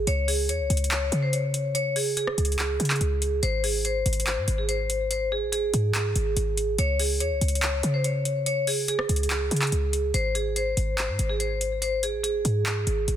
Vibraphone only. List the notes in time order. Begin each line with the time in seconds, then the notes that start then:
0.07 C#5
0.28 G#4
0.49 C#5
0.91 C#5
1.22 C5
1.33 C#5
1.75 C#5
1.96 G#4
2.17 G#4
3.43 C5
3.64 G#4
3.85 C5
4.26 C5
4.58 G#4
4.69 C5
5.11 C5
5.32 G#4
5.52 G#4
6.79 C#5
6.99 G#4
7.20 C#5
7.62 C#5
7.94 C5
8.05 C#5
8.46 C#5
8.68 G#4
8.88 G#4
10.14 C5
10.35 G#4
10.56 C5
10.98 C5
11.29 G#4
11.40 C5
11.82 C5
12.03 G#4
12.24 G#4